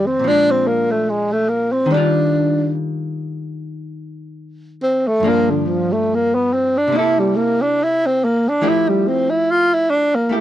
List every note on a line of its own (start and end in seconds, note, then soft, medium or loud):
0.00 0.21 F2 soft
0.00 0.22 D#3 soft
0.00 0.23 G#3 medium
0.00 0.24 C4 medium
0.06 0.29 C4 medium
0.20 1.85 A#2 soft
0.24 1.89 F3 soft
0.24 1.91 G#3 soft
0.24 0.52 D4 medium
0.31 1.92 D4 soft
0.50 0.69 C4 medium
0.67 0.93 A#3 medium
0.91 1.11 A3 medium
1.10 1.34 G#3 medium
1.32 1.50 A3 medium
1.49 1.74 A#3 medium
1.72 1.93 C4 medium
1.86 5.21 D#3 soft
1.91 5.22 G3 soft
1.91 2.73 D4 medium
1.91 5.24 D4 soft
1.97 5.25 F4 soft
4.83 5.09 C4 medium
5.08 5.29 A3 medium
5.20 6.90 G2 soft
5.20 6.91 F3 soft
5.24 6.91 A#3 soft
5.24 5.52 A#3 medium
5.24 6.92 D4 soft
5.50 5.68 D3 medium
5.67 5.94 F3 medium
5.92 6.16 A3 medium
6.15 6.36 A#3 medium
6.35 6.54 B3 medium
6.53 6.79 C4 medium
6.78 6.99 D4 medium
6.88 8.59 C3 soft
6.92 8.62 A#3 soft
6.92 8.61 E4 soft
6.97 7.21 E4 medium
6.97 8.63 A4 soft
7.19 7.38 G3 medium
7.36 7.63 A#3 medium
7.62 7.85 D4 medium
7.83 8.08 E4 medium
8.06 8.26 C4 medium
8.25 8.50 A#3 medium
8.49 8.71 D4 medium
8.62 10.41 F3 soft
8.62 10.28 A3 soft
8.62 10.30 E4 soft
8.62 10.31 G4 soft
8.69 8.91 E4 medium
8.89 9.09 G3 medium
9.08 9.32 C4 medium
9.30 9.52 E4 medium
9.51 9.76 F4 medium
9.74 9.92 E4 medium
9.90 10.17 D4 medium
10.15 10.38 A#3 medium
10.29 10.41 A3 soft
10.29 10.41 E4 soft
10.29 10.41 G4 soft
10.37 10.41 A3 medium